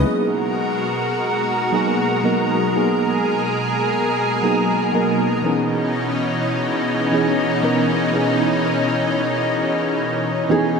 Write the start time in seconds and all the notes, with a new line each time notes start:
0.02 B2 F#3 G#3 A#3 B3 D#4 F#4 G#4 A#4
1.72 F#3 A#3 B3 D#4 G#4
2.24 F#3 A#3 B3 D#4 A#4
2.73 F#3 A#3 B3 D#4 G#4
2.77 G#4
4.43 F#3 A#3 B3 D#4 G#4
4.93 F#3 A#3 B3 D#4 A#4
5.42 E3 B3 C#4 D#4
5.46 G#4
7.12 E3 B3 C#4 D#4 G#4
7.63 E3 B3 C#4 D#4 A#4
8.12 E3 B3 C#4 D#4 G#4
10.49 E3 B3 C#4 D#4 G#4